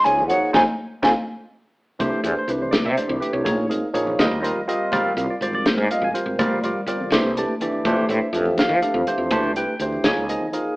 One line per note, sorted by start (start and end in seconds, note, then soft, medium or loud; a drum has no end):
0.04 0.29 C#2 medium
0.04 0.22 F3 medium
0.04 0.22 A#3 medium
0.04 0.22 D#4 medium
0.04 0.22 G#4 medium
0.04 0.22 C#5 medium
0.04 0.27 G#5 loud
0.04 closed hi-hat medium
0.19 low conga medium
0.27 0.39 F#2 medium
0.27 0.54 F3 medium
0.27 0.54 A#3 medium
0.27 0.52 D#4 medium
0.27 0.55 G#4 medium
0.27 0.55 C#5 medium
0.27 0.51 F#5 medium
0.27 closed hi-hat medium
0.44 low conga soft
0.53 0.63 F2 loud
0.53 0.62 C4 medium
0.53 0.62 D#4 loud
0.53 0.61 F4 medium
0.53 0.62 G#5 medium
0.53 kick medium
0.53 snare medium
0.53 high conga loud
1.03 1.12 F2 medium
1.03 1.11 C4 loud
1.03 1.11 D#4 medium
1.03 1.11 F4 medium
1.03 1.11 G#5 medium
1.03 kick medium
1.03 snare medium
1.03 high conga medium
1.99 2.10 C2 medium
1.99 2.19 E3 medium
1.99 2.19 A3 medium
1.99 2.20 D4 medium
1.99 2.20 G4 medium
1.99 2.20 C5 medium
1.99 kick loud
1.99 closed hi-hat medium
1.99 high conga medium
2.12 low conga medium
2.24 2.34 E2 medium
2.24 2.41 E3 medium
2.24 2.41 A3 medium
2.24 2.42 D4 medium
2.24 2.42 G4 medium
2.24 2.37 C5 medium
2.24 closed hi-hat medium
2.39 2.50 C5 medium
2.48 2.86 C2 medium
2.48 2.82 E3 medium
2.48 2.82 A3 medium
2.48 2.82 D4 medium
2.48 2.83 G4 medium
2.48 2.83 B4 medium
2.48 closed hi-hat medium
2.61 2.73 C5 medium
2.61 low conga medium
2.71 2.84 D5 medium
2.71 snare loud
2.71 closed hi-hat medium
2.71 high conga medium
2.71 low conga soft
2.85 2.95 C3 medium
2.85 2.98 E5 medium
2.97 3.14 E3 medium
2.97 3.14 A3 medium
2.97 3.14 D4 medium
2.97 3.07 G4 medium
2.97 3.14 C5 medium
2.97 3.10 D5 medium
2.97 closed hi-hat medium
3.08 3.19 C2 medium
3.08 3.20 G4 soft
3.08 low conga medium
3.20 3.46 E3 medium
3.20 3.46 A3 medium
3.20 3.46 D4 medium
3.20 3.46 G4 medium
3.20 3.33 B4 medium
3.20 closed hi-hat medium
3.33 3.43 C2 medium
3.33 3.44 C#5 medium
3.44 3.70 A#1 loud
3.44 3.65 F3 medium
3.44 3.65 A#3 medium
3.44 3.65 D#4 medium
3.44 3.65 G#4 medium
3.44 3.65 C#5 medium
3.44 kick loud
3.44 closed hi-hat medium
3.44 high conga loud
3.69 3.80 G#1 medium
3.69 3.87 F3 medium
3.69 3.87 A#3 medium
3.69 3.87 D#4 medium
3.69 3.87 G#4 medium
3.69 3.87 A#4 medium
3.69 closed hi-hat medium
3.93 4.14 A#1 medium
3.93 4.18 F3 medium
3.93 4.19 A#3 medium
3.93 4.19 D#4 medium
3.93 4.19 G#4 medium
3.93 4.19 C#5 medium
3.93 closed hi-hat medium
4.07 low conga medium
4.19 4.29 D#2 loud
4.19 4.39 G3 medium
4.19 4.39 C4 medium
4.19 4.39 F4 medium
4.19 4.39 A#4 medium
4.19 4.39 D#5 loud
4.19 snare loud
4.19 closed hi-hat medium
4.19 high conga medium
4.19 low conga soft
4.31 4.51 D#2 medium
4.42 4.60 G3 medium
4.42 4.60 C4 medium
4.42 4.60 F4 medium
4.42 4.60 A#4 medium
4.42 4.60 D#5 medium
4.42 closed hi-hat medium
4.55 low conga medium
4.68 4.91 G3 medium
4.68 4.91 C4 medium
4.68 4.91 F4 medium
4.68 4.91 A#4 medium
4.68 4.93 D#5 medium
4.68 closed hi-hat medium
4.92 5.02 G#1 loud
4.92 5.12 G3 medium
4.92 5.12 C4 medium
4.92 5.12 F4 medium
4.92 5.12 A#4 medium
4.92 5.12 D5 medium
4.92 kick loud
4.92 closed hi-hat medium
4.92 high conga medium
5.05 low conga medium
5.17 5.26 C2 medium
5.17 5.34 G3 medium
5.17 5.34 C4 medium
5.17 5.34 F4 medium
5.17 5.34 A#4 medium
5.17 5.34 F5 medium
5.17 closed hi-hat medium
5.30 5.42 D5 medium
5.30 muted fretless electric bass stroke soft
5.41 5.79 G#1 medium
5.41 5.75 G3 medium
5.41 5.75 C4 medium
5.41 5.75 F4 medium
5.41 5.75 A#4 medium
5.41 5.53 C5 medium
5.41 5.53 D5 medium
5.41 closed hi-hat medium
5.53 5.66 D5 medium
5.53 low conga medium
5.66 5.74 C5 medium
5.66 snare loud
5.66 closed hi-hat medium
5.66 high conga medium
5.66 low conga soft
5.77 5.87 G#2 medium
5.77 5.83 A#4 medium
5.84 5.91 D5 medium
5.91 6.07 G3 medium
5.91 6.07 C4 medium
5.91 6.07 F4 medium
5.91 6.07 A#4 medium
5.91 6.03 D#5 medium
5.91 6.07 F5 medium
5.91 closed hi-hat medium
6.02 6.11 G#1 medium
6.02 6.11 G#5 medium
6.02 low conga medium
6.14 6.37 G3 medium
6.14 6.38 C4 medium
6.14 6.38 F4 medium
6.14 6.38 A#4 medium
6.14 6.39 C5 medium
6.14 closed hi-hat medium
6.26 6.36 G#1 medium
6.38 6.63 G1 loud
6.38 6.58 G3 medium
6.38 6.58 C4 medium
6.38 6.58 F4 medium
6.38 6.58 A#4 medium
6.38 6.58 D5 medium
6.38 kick loud
6.38 closed hi-hat medium
6.38 high conga loud
6.38 low conga soft
6.51 low conga medium
6.63 6.73 F1 medium
6.63 6.80 G3 medium
6.63 6.80 C4 medium
6.63 6.80 F4 medium
6.63 6.80 A#4 medium
6.63 6.81 D5 medium
6.63 closed hi-hat medium
6.76 low conga soft
6.86 7.06 G1 medium
6.86 7.12 G3 medium
6.86 7.12 C4 medium
6.86 7.12 F4 medium
6.86 7.12 A#4 medium
6.86 7.12 D5 medium
6.86 closed hi-hat medium
7.00 low conga medium
7.10 7.21 C2 medium
7.10 7.31 E3 medium
7.10 7.31 A3 medium
7.10 7.31 D4 medium
7.10 7.32 G4 medium
7.10 7.32 C5 medium
7.10 snare loud
7.10 closed hi-hat medium
7.10 high conga loud
7.10 low conga soft
7.23 7.43 C2 medium
7.23 high conga medium
7.36 7.53 E3 medium
7.36 7.54 A3 medium
7.36 7.54 D4 medium
7.36 7.54 G4 medium
7.36 7.54 D5 medium
7.36 closed hi-hat medium
7.36 high conga medium
7.48 high conga medium
7.61 7.84 E3 medium
7.61 7.84 A3 medium
7.61 7.85 D4 medium
7.61 7.85 G4 medium
7.61 7.86 D5 medium
7.61 closed hi-hat medium
7.61 low conga medium
7.72 low conga medium
7.85 7.95 F2 loud
7.85 8.05 E3 medium
7.85 8.05 A3 medium
7.85 8.05 D4 medium
7.85 8.05 G4 medium
7.85 8.05 C5 loud
7.85 kick loud
7.85 closed hi-hat medium
7.85 high conga loud
7.96 low conga medium
8.09 8.19 A2 medium
8.09 8.26 E3 medium
8.09 8.26 A3 medium
8.09 8.26 D4 medium
8.09 8.27 G4 medium
8.09 8.27 C5 medium
8.09 8.55 E5 medium
8.09 closed hi-hat medium
8.21 muted fretless electric bass stroke soft
8.33 8.70 F2 medium
8.33 8.68 E3 medium
8.33 8.68 A3 medium
8.33 8.68 D4 medium
8.33 8.68 G4 medium
8.33 8.68 A4 medium
8.33 closed hi-hat medium
8.46 low conga medium
8.58 9.28 F5 medium
8.58 snare loud
8.58 closed hi-hat medium
8.58 high conga loud
8.58 low conga soft
8.69 8.79 F3 medium
8.81 8.99 E3 medium
8.81 8.99 A3 medium
8.81 8.99 D4 medium
8.81 8.99 G4 medium
8.81 8.99 A4 medium
8.81 closed hi-hat medium
8.94 9.04 F2 medium
8.94 low conga medium
9.06 9.30 E3 medium
9.06 9.30 A3 medium
9.06 9.31 D4 medium
9.06 9.30 G4 medium
9.06 9.31 C5 medium
9.06 closed hi-hat medium
9.18 9.28 F2 medium
9.31 9.54 D2 loud
9.31 9.51 E3 medium
9.31 9.51 A3 medium
9.31 9.51 D4 medium
9.31 9.51 G4 medium
9.31 9.51 C5 medium
9.31 kick loud
9.31 closed hi-hat medium
9.31 high conga loud
9.43 low conga medium
9.54 9.64 C2 medium
9.54 9.73 E3 medium
9.54 9.73 A3 medium
9.54 9.73 D4 medium
9.54 9.73 G4 medium
9.54 9.73 B4 medium
9.54 10.01 G5 medium
9.54 closed hi-hat medium
9.79 9.99 D2 medium
9.79 10.05 E3 medium
9.79 10.05 A3 medium
9.79 10.05 D4 medium
9.79 10.05 G4 medium
9.79 10.05 C5 medium
9.79 closed hi-hat medium
9.92 low conga medium
10.04 10.14 C#2 medium
10.04 10.23 F3 medium
10.04 10.24 A#3 medium
10.04 10.24 D#4 medium
10.04 10.24 G#4 medium
10.04 10.24 C#5 medium
10.04 10.74 G#5 loud
10.04 snare loud
10.04 closed hi-hat medium
10.04 high conga medium
10.04 low conga soft
10.16 10.36 C#2 medium
10.28 10.45 F3 medium
10.28 10.46 A#3 medium
10.28 10.46 D#4 medium
10.28 10.46 G#4 medium
10.28 10.46 D#5 medium
10.28 closed hi-hat medium
10.41 low conga medium
10.53 10.76 F3 medium
10.53 10.76 A#3 medium
10.53 10.76 D#4 medium
10.53 10.76 G#4 medium
10.53 10.76 A#4 medium
10.53 closed hi-hat medium